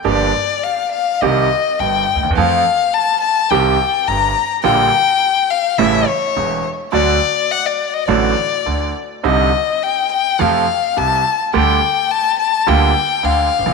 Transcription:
<<
  \new Staff \with { instrumentName = "Violin" } { \time 4/4 \key g \minor \tempo 4 = 105 d''4 f''8 f''8 ees''4 g''8. r16 | f''4 a''8 a''8 g''4 bes''8. r16 | g''4. f''8 e''8 cis''4 r8 | d''4 fis''16 d''8 ees''16 d''4. r8 |
ees''4 g''8 g''8 f''4 a''8. r16 | g''4 a''8 a''8 g''4 f''4 | }
  \new Staff \with { instrumentName = "Grand piano" } { \clef bass \time 4/4 \key g \minor <g,, g, f bes d' g'>8 r4. <c, c ees g c' g'>8 r8 <g,, g,>8 r32 d,32 ees,32 e,32 | <f, f a c' a'>8 r4. <c, c ees g c' g'>8 r8 <g,, g,>8 r8 | <bes,, bes, d g bes f'>8 r4. <a,, a, cis g a e'>8 r8 <e,, e,>8 r8 | <d, d fis a fis'>8 r4. <a,, a, d fis a fis'>8 r8 <d, d>8 r8 |
<c, c d g c' ees'>8 r4. <f, c f a f'>8 r8 <c, c>8 r8 | <d, d g a g'>8 r4. <d, d g bes f'>8 r8 <d, d>8 r32 a,,32 bes,,32 r32 | }
  \new Staff \with { instrumentName = "Upright bass" } { \clef bass \time 4/4 \key g \minor g,,16. r4. r32 c,16. r8 r32 g,,16. r16 d,32 ees,32 e,32 | f,16. r4. r32 c,16. r8 r32 g,,16. r8 r32 | bes,,16. r4. r32 a,,16. r8 r32 e,,16. r8 r32 | d,16. r4. r32 a,,16. r8 r32 d,16. r8 r32 |
c,16. r4. r32 f,16. r8 r32 c,16. r8 r32 | d,16. r4. r32 d,16. r8 r32 d,16. r16 a,,32 bes,,32 r32 | }
>>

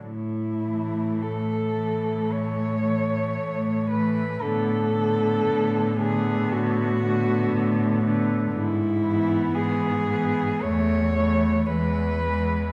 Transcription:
<<
  \new Staff \with { instrumentName = "Cello" } { \time 4/4 \key a \major \tempo 4 = 57 e'4 a'4 cis''4. b'8 | a'4. gis'8 fis'4. r8 | e'4 gis'4 cis''4 b'4 | }
  \new Staff \with { instrumentName = "Cello" } { \time 4/4 \key a \major r8 a4 a4 a4 a8 | b8 b4 b4 b4 b8 | r8 b4 b8 a8 a8 gis8 gis8 | }
  \new Staff \with { instrumentName = "Cello" } { \clef bass \time 4/4 \key a \major r8 e4 e4 e4 e8 | d8 d4 d4 d4 d8 | r8 e4 e8 e8 e8 e8 e8 | }
  \new Staff \with { instrumentName = "Cello" } { \clef bass \time 4/4 \key a \major a,4 a,4 a,4 a,4 | a,4 a,4 a,4 a,4 | gis,4 gis,4 e,4 e,4 | }
>>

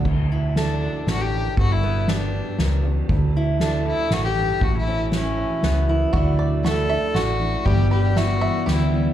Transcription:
<<
  \new Staff \with { instrumentName = "Five-string banjo" } { \time 3/4 \key d \major \tempo 4 = 118 r2. | r2. | r2. | r2. |
fis'8 d''8 fis'8 e''8 fis'4 | g8 b'8 e'8 e''8 g'4 | }
  \new Staff \with { instrumentName = "Fiddle" } { \time 3/4 \key d \major r4 d'4 fis'16 g'8. | fis'16 e'8. d'4. r8 | r4 d'8 e'8 fis'16 g'8. | fis'16 e'8. cis'4. r8 |
r4 a'4 fis'4 | g'8 g'8 fis'4 e'8. r16 | }
  \new Staff \with { instrumentName = "Steel-string acoustic guitar" } { \time 3/4 \key d \major r2. | r2. | r2. | r2. |
<d fis a d' e'>4 <fis a d' e'>8 <a d' e'>8 <fis a d' e'>8 <a d' e'>8 | <g, d e g b e'>4 <e g b e'>8 <e g b e'>8 <e g b e'>8 <e g b e'>8 | }
  \new Staff \with { instrumentName = "Steel-string acoustic guitar" } { \clef bass \time 3/4 \key d \major << { r8 e'8 a'2 | r8 b8 g'2 | r8 e'8 a'2 | r8 cis'8 e'4 b8 e'8~ |
e'2. | r2. | } \\ { d,4. d8 e,8 fis,8 | g,2 fis,8 e,8 | d,4. d8 fis,8 g,8 | a,4. e4. |
r2. | r2. | } >> }
  \new Staff \with { instrumentName = "Picked electric bass" } { \clef bass \time 3/4 \key d \major d,2 a,,4 | g,,2 cis,4 | d,2 a,,4 | a,,2 cis,4 |
d,2 a,,4 | g,,2 d,4 | }
  \new DrumStaff \with { instrumentName = "Drums" } \drummode { \time 3/4 <cymc bd>4 <cymr sn>4 <cymr sn>8 cymr8 | <bd cymr>4 <cymr sn>4 <cymr sn>8 cymr8 | <bd cymr>4 <cymr sn>4 <cymr sn>8 cymr8 | <bd cymr>4 <cymr sn>4 <cymr sn>8 cymr8 |
<bd cymr>4 <cymr sn>4 <cymr sn>8 cymr8 | <bd cymr>4 <cymr sn>4 <cymr sn>8 cymr8 | }
>>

